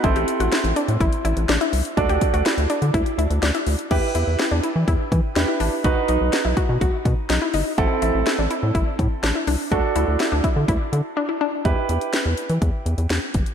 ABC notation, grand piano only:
X:1
M:4/4
L:1/8
Q:1/4=124
K:Em
V:1 name="Grand piano"
[CEAc]8 | [DFAd]8 | [EGB]6 [EGB]2 | [^DFB]8 |
[CEA]8 | [DFA]8 | [EGB]8 |]